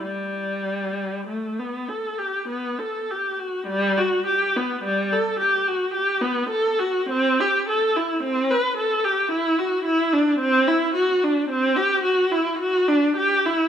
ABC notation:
X:1
M:3/4
L:1/16
Q:1/4=53
K:G
V:1 name="Viola"
G,4 A, B, A G B, A G F | G, F G B, G, A G F G B, A F | C G A E C B A G E F E D | C E F D C G F E F D G E |]